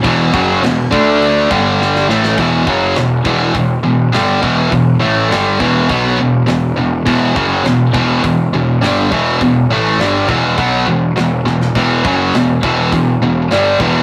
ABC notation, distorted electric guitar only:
X:1
M:4/4
L:1/8
Q:1/4=102
K:Em
V:1 name="Distorted electric guitar" clef=bass
[E,,B,,E,] [F,,^C,F,] [E,,B,,] [D,A,D]2 [G,,D,G,]2 [A,,E,A,] | [E,,B,,E,] [F,,^C,F,] [E,,B,,] [E,,B,,E,] [E,,B,,] [E,,B,,] [G,,D,G,] [E,,B,,E,] | [E,,B,,] [A,,E,A,] [G,,D,G,] [E,,B,,E,] [B,,F,B,] [E,,B,,] [E,,B,,] [E,,B,,] | [E,,B,,E,] [F,,^C,F,] [E,,B,,] [E,,B,,E,] [E,,B,,] [E,,B,,] [G,,D,G,] [E,,B,,E,] |
[E,,B,,] [A,,E,A,] [G,,D,G,] [E,,B,,E,] [B,,F,B,] [E,,B,,] [E,,B,,] [E,,B,,] | [E,,B,,E,] [F,,^C,F,] [E,,B,,] [E,,B,,E,] [E,,B,,] [E,,B,,] [G,,D,G,] [E,,B,,E,] |]